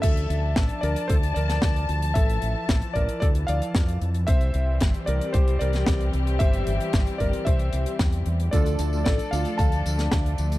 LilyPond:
<<
  \new Staff \with { instrumentName = "Electric grand piano" } { \time 4/4 \key d \minor \tempo 4 = 113 <a' e''>4. <bes' d''>8 <a' c''>8 <bes' d''>4 r8 | <a' e''>4. <bes' d''>8 <a' d''>8 <d'' f''>4 r8 | <c'' e''>4. <bes' d''>8 <g' c''>8 <bes' d''>4 r8 | <c'' e''>4. <bes' d''>8 <c'' e''>4 r4 |
<a' d''>4 <a' d''>8 <d'' f''>8 <f'' a''>4. r8 | }
  \new Staff \with { instrumentName = "Analog polysynth" } { \time 4/4 \key d \minor r1 | r1 | r1 | r1 |
<d a d' f' a'>8. <d a d' f' a'>16 r8 <d a d' f' a'>16 r2 r16 | }
  \new Staff \with { instrumentName = "String section" } { \time 4/4 \key d \minor << { <f a''>1~ | <f a''>1 | <e g g'>1~ | <e g g'>1 |
<f a a'>1 | } \\ { d'1 | e1 | c'1~ | c'1 |
d'1 | } >> }
  \new Staff \with { instrumentName = "Fingered electric bass" } { \clef bass \time 4/4 \key d \minor d,8 d,8 a,,8 d,8 d,8 d,8 d,8 d,8 | a,,8 a,,8 a,,8 a,,8 d,8 d,8 f,8 f,8 | c,8 c,8 g,,8 c,8 c,8 c,8 c,8 c,8 | g,,8 g,,8 g,,8 g,,8 c,8 c,8 e,8 e,8 |
d,8 d,8 a,,8 d,8 d,8 d,8 d,8 d,8 | }
  \new DrumStaff \with { instrumentName = "Drums" } \drummode { \time 4/4 <cymc hh bd>16 hh16 hh8 <hh bd sn>16 hh16 hh16 hh16 <hh bd>16 hh16 hh16 <hh sn>16 <hh bd sn>16 hh16 hh16 hh16 | <hh bd>16 hh16 hh8 <hh bd sn>16 hh16 <hh bd>16 hh16 <hh bd>16 hh16 hh16 hh16 <hh bd sn>16 hh16 hh16 hh16 | <hh bd>16 hh16 hh8 <hh bd sn>16 hh16 hh16 hh16 <hh bd>16 hh16 hh16 <hh sn>16 <hh bd sn>16 hh16 hh16 hh16 | <hh bd>16 hh16 hh16 hh16 <hh bd sn>16 hh16 <hh bd>16 hh16 <hh bd>16 hh16 hh16 hh16 <hh bd sn>16 hh16 hh16 hh16 |
<hh bd tamb>16 <hh tamb>16 <hh tamb>16 tamb16 <hh bd sn tamb>16 <hh tamb>16 <hh tamb>16 <hh tamb>16 <hh bd tamb>16 <hh tamb>16 <hh tamb>16 <hh sn tamb>16 <hh bd sn tamb>16 hh16 <hh tamb>16 <hh tamb>16 | }
>>